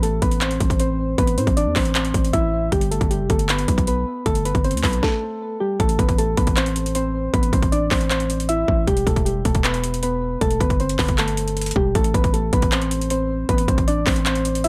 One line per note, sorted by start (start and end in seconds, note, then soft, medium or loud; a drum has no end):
0.00 0.21 A1 loud
0.00 0.20 A3 medium
0.00 0.20 A4 medium
0.00 closed hi-hat medium
0.22 0.59 A1 loud
0.22 0.40 B3 medium
0.22 0.39 B4 medium
0.22 kick loud
0.22 closed hi-hat medium
0.31 closed hi-hat medium
0.41 0.78 C4 medium
0.41 0.78 C5 medium
0.41 clap loud
0.41 closed hi-hat medium
0.51 closed hi-hat medium
0.60 1.16 A1 loud
0.60 kick medium
0.60 closed hi-hat medium
0.70 kick loud
0.70 closed hi-hat medium
0.80 1.17 C4 medium
0.80 1.16 C5 medium
0.80 closed hi-hat medium
1.18 1.39 A1 loud
1.18 1.36 B3 medium
1.18 1.36 B4 medium
1.18 kick loud
1.18 closed hi-hat medium
1.27 closed hi-hat medium
1.37 1.47 A2 loud
1.37 1.55 C4 medium
1.37 1.55 C5 medium
1.37 closed hi-hat medium
1.47 1.68 A1 loud
1.47 kick medium
1.47 closed hi-hat soft
1.57 1.75 D4 medium
1.57 1.74 D5 medium
1.57 closed hi-hat medium
1.66 1.75 E2 loud
1.75 2.13 A1 loud
1.75 1.93 C4 medium
1.75 1.93 C5 medium
1.75 kick loud
1.75 clap medium
1.75 open hi-hat medium
1.85 closed hi-hat medium
1.95 2.32 C4 medium
1.95 2.31 C5 medium
1.95 clap loud
1.95 closed hi-hat medium
2.05 closed hi-hat medium
2.14 2.33 A1 loud
2.14 kick medium
2.14 closed hi-hat medium
2.25 closed hi-hat medium
2.33 2.71 A1 loud
2.33 2.70 E4 medium
2.33 2.70 E5 loud
2.33 kick medium
2.33 closed hi-hat medium
2.72 3.00 G1 loud
2.72 2.90 G3 medium
2.72 2.89 G4 loud
2.72 kick loud
2.72 closed hi-hat medium
2.81 closed hi-hat medium
2.91 3.09 A3 medium
2.91 3.09 A4 medium
2.91 closed hi-hat medium
3.01 3.22 G1 loud
3.01 kick loud
3.01 closed hi-hat soft
3.11 3.28 G3 medium
3.11 3.28 G4 medium
3.11 closed hi-hat medium
3.20 3.29 F1 loud
3.30 3.67 G1 loud
3.30 3.47 A3 medium
3.30 3.47 A4 medium
3.30 kick loud
3.30 closed hi-hat medium
3.39 closed hi-hat medium
3.49 3.86 B3 medium
3.49 3.85 B4 medium
3.49 clap loud
3.49 closed hi-hat medium
3.59 closed hi-hat medium
3.68 4.05 B1 loud
3.68 kick medium
3.68 closed hi-hat medium
3.78 kick loud
3.78 closed hi-hat medium
3.87 4.24 B3 medium
3.87 4.24 B4 medium
3.87 closed hi-hat medium
4.26 4.54 G1 loud
4.26 4.44 A3 medium
4.26 4.43 A4 loud
4.26 kick loud
4.26 closed hi-hat medium
4.35 closed hi-hat medium
4.45 4.63 B3 medium
4.45 4.63 B4 medium
4.45 closed hi-hat medium
4.55 4.75 G1 loud
4.55 kick loud
4.55 closed hi-hat soft
4.64 4.82 C4 medium
4.64 4.82 C5 medium
4.64 closed hi-hat soft
4.71 4.83 D2 loud
4.71 closed hi-hat medium
4.77 closed hi-hat medium
4.84 5.02 B1 loud
4.84 5.01 B3 medium
4.84 5.01 B4 medium
4.84 kick loud
4.84 clap medium
4.84 open hi-hat medium
4.93 closed hi-hat medium
5.03 5.58 A3 medium
5.03 5.57 A4 medium
5.03 kick loud
5.03 snare medium
5.60 5.78 G3 medium
5.60 5.78 G4 medium
5.80 5.98 A1 loud
5.80 5.98 A3 medium
5.80 5.97 A4 loud
5.80 kick loud
5.80 closed hi-hat medium
5.89 closed hi-hat medium
5.99 6.36 A1 loud
5.99 6.17 B3 medium
5.99 6.16 B4 medium
5.99 kick loud
5.99 closed hi-hat medium
6.09 kick medium
6.09 closed hi-hat soft
6.18 6.36 A3 medium
6.18 6.36 A4 medium
6.18 closed hi-hat medium
6.37 7.30 A1 loud
6.37 6.55 B3 medium
6.37 6.55 B4 medium
6.37 kick loud
6.37 closed hi-hat medium
6.47 kick loud
6.47 closed hi-hat medium
6.57 6.93 C4 medium
6.57 6.93 C5 medium
6.57 clap loud
6.57 closed hi-hat medium
6.66 closed hi-hat medium
6.76 closed hi-hat medium
6.86 closed hi-hat medium
6.95 7.32 C4 medium
6.95 7.31 C5 medium
6.95 closed hi-hat medium
7.33 7.52 A1 loud
7.33 7.51 B3 medium
7.33 7.51 B4 loud
7.33 kick loud
7.33 closed hi-hat medium
7.43 closed hi-hat medium
7.53 7.90 A1 loud
7.53 7.71 C4 medium
7.53 7.70 C5 medium
7.53 kick loud
7.53 closed hi-hat medium
7.62 kick loud
7.62 closed hi-hat soft
7.72 7.90 D4 medium
7.72 7.89 D5 medium
7.72 closed hi-hat medium
7.91 8.65 A1 loud
7.91 8.09 C4 medium
7.91 8.09 C5 medium
7.91 kick loud
7.91 clap loud
7.91 open hi-hat medium
8.01 closed hi-hat medium
8.11 8.47 C4 medium
8.11 8.47 C5 loud
8.11 clap loud
8.11 closed hi-hat medium
8.20 closed hi-hat medium
8.30 closed hi-hat medium
8.40 closed hi-hat medium
8.49 8.85 E4 medium
8.49 8.85 E5 loud
8.49 closed hi-hat medium
8.68 8.87 A1 loud
8.68 kick medium
8.87 9.06 E1 loud
8.87 9.05 G3 medium
8.87 9.05 G4 loud
8.87 kick loud
8.87 closed hi-hat medium
8.97 closed hi-hat medium
9.07 9.44 E1 loud
9.07 9.25 A3 medium
9.07 9.24 A4 medium
9.07 kick loud
9.07 closed hi-hat medium
9.16 kick medium
9.16 closed hi-hat soft
9.26 9.43 G3 medium
9.26 9.43 G4 medium
9.26 closed hi-hat medium
9.45 10.37 E1 loud
9.45 9.63 A3 medium
9.45 9.62 A4 medium
9.45 kick loud
9.45 closed hi-hat medium
9.55 kick loud
9.55 closed hi-hat medium
9.64 10.01 B3 medium
9.64 10.00 B4 medium
9.64 clap loud
9.64 closed hi-hat medium
9.74 closed hi-hat medium
9.84 closed hi-hat medium
9.94 closed hi-hat medium
10.03 10.40 B3 medium
10.03 10.39 B4 medium
10.03 closed hi-hat medium
10.41 10.60 E1 loud
10.41 10.59 A3 medium
10.41 10.59 A4 loud
10.41 kick loud
10.41 closed hi-hat medium
10.51 closed hi-hat medium
10.60 10.97 G1 loud
10.60 10.78 B3 medium
10.60 10.78 B4 medium
10.60 kick loud
10.60 closed hi-hat medium
10.70 kick medium
10.70 closed hi-hat soft
10.80 10.98 C4 medium
10.80 10.97 C5 medium
10.80 closed hi-hat soft
10.89 closed hi-hat medium
10.99 11.73 G1 loud
10.99 11.17 B3 medium
10.99 11.16 B4 medium
10.99 kick loud
10.99 clap loud
10.99 open hi-hat medium
11.08 kick loud
11.08 closed hi-hat medium
11.18 11.73 A3 medium
11.18 11.73 A4 medium
11.18 clap loud
11.18 closed hi-hat medium
11.28 closed hi-hat medium
11.37 closed hi-hat medium
11.48 closed hi-hat medium
11.57 closed hi-hat medium
11.61 closed hi-hat medium
11.66 closed hi-hat medium
11.71 closed hi-hat medium
11.76 11.94 E1 loud
11.76 11.94 G3 medium
11.76 11.94 G4 medium
11.76 kick loud
11.95 12.14 A1 loud
11.95 12.13 A3 medium
11.95 12.13 A4 loud
11.95 kick loud
11.95 closed hi-hat medium
12.04 closed hi-hat medium
12.14 12.51 A1 loud
12.14 12.32 B3 medium
12.14 12.32 B4 medium
12.14 kick loud
12.14 closed hi-hat medium
12.24 kick loud
12.24 closed hi-hat soft
12.34 12.51 A3 medium
12.34 12.51 A4 medium
12.34 closed hi-hat medium
12.53 13.45 A1 loud
12.53 12.71 B3 medium
12.53 12.70 B4 medium
12.53 kick loud
12.53 closed hi-hat medium
12.62 kick loud
12.62 closed hi-hat medium
12.72 13.09 C4 medium
12.72 13.08 C5 medium
12.72 clap loud
12.72 closed hi-hat medium
12.82 closed hi-hat medium
12.91 closed hi-hat medium
13.01 closed hi-hat medium
13.10 13.47 C4 medium
13.10 13.47 C5 medium
13.10 closed hi-hat medium
13.49 13.67 A1 loud
13.49 13.67 B3 medium
13.49 13.66 B4 loud
13.49 kick loud
13.49 closed hi-hat medium
13.58 closed hi-hat medium
13.68 14.05 A1 loud
13.68 13.86 C4 medium
13.68 13.86 C5 medium
13.68 kick loud
13.68 closed hi-hat medium
13.78 kick medium
13.78 closed hi-hat soft
13.88 14.05 D4 medium
13.88 14.05 D5 medium
13.88 closed hi-hat medium
14.06 14.68 A1 loud
14.06 14.24 C4 medium
14.06 14.24 C5 medium
14.06 kick loud
14.06 clap loud
14.06 open hi-hat medium
14.16 closed hi-hat medium
14.26 14.63 C4 medium
14.26 14.62 C5 medium
14.26 clap loud
14.26 closed hi-hat medium
14.35 closed hi-hat medium
14.45 closed hi-hat medium
14.55 closed hi-hat medium
14.64 14.68 E4 medium
14.64 14.68 E5 loud
14.64 closed hi-hat medium